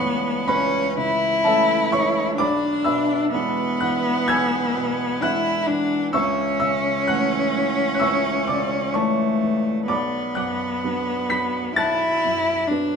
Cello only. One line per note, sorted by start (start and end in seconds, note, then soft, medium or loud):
0.00 0.49 B3 medium
0.47 0.99 C#4 medium
0.97 2.35 E4 medium
2.36 3.29 D4 medium
3.31 5.24 B3 medium
5.22 5.68 E4 medium
5.67 6.13 D4 medium
6.14 8.97 C#4 medium
8.95 9.86 A3 medium
9.86 11.71 B3 medium
11.75 12.69 E4 medium
12.68 12.96 D4 medium